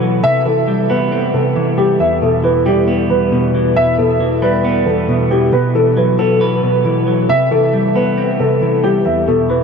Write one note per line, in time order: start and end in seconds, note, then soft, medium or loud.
0.00 0.23 B2 medium
0.00 0.23 E3 loud
0.00 0.23 F#3 medium
0.00 0.23 B3 loud
0.00 0.20 B4 medium
0.00 0.23 B4 medium
0.23 1.33 C3 medium
0.23 0.41 E5 loud
0.45 1.55 E3 medium
0.45 0.87 A4 medium
0.68 1.77 G3 medium
0.90 2.00 B3 loud
0.90 1.31 B4 medium
1.12 2.00 C4 medium
1.34 1.99 C3 medium
1.34 1.75 A4 medium
1.56 2.00 E3 medium
1.78 2.00 G3 medium
1.78 1.95 G4 medium
2.00 3.09 E2 loud
2.00 2.17 E5 medium
2.22 3.31 B2 medium
2.22 2.39 A4 medium
2.44 3.54 E3 medium
2.44 2.61 B4 medium
2.66 3.76 G3 medium
2.66 2.83 G4 medium
2.88 3.98 B3 medium
3.10 3.75 E2 medium
3.10 3.72 B4 medium
3.32 3.98 B2 loud
3.55 4.19 E3 medium
3.76 4.85 E2 medium
3.76 3.93 E5 loud
3.99 5.07 B2 medium
3.99 4.40 A4 medium
4.20 5.30 E3 medium
4.42 5.53 G3 medium
4.42 4.84 B4 medium
4.65 5.53 B3 medium
4.86 5.53 E2 medium
4.86 5.28 A4 medium
5.08 5.52 B2 medium
5.31 5.53 E3 medium
5.31 5.48 G4 medium
5.53 6.62 B2 medium
5.53 5.70 B4 medium
5.75 6.84 E3 medium
5.75 5.92 A4 medium
5.97 7.06 F#3 medium
5.97 6.14 B4 medium
6.19 7.29 B3 loud
6.19 6.36 A4 medium
6.41 7.29 B4 medium
6.63 7.29 B2 medium
6.63 7.25 B4 medium
6.85 7.29 E3 loud
7.07 7.29 F#3 medium
7.29 8.39 C3 medium
7.29 7.46 E5 loud
7.51 8.61 E3 medium
7.51 7.93 A4 medium
7.73 8.83 G3 medium
7.96 9.06 B3 loud
7.96 8.37 B4 medium
8.18 9.06 C4 medium
8.40 9.05 C3 medium
8.40 8.81 A4 medium
8.62 9.06 E3 medium
8.84 9.06 G3 medium
8.84 9.01 G4 medium
9.06 9.64 E2 medium
9.06 9.23 E5 medium
9.28 9.64 B2 medium
9.28 9.45 A4 medium
9.50 9.64 E3 medium
9.50 9.64 B4 medium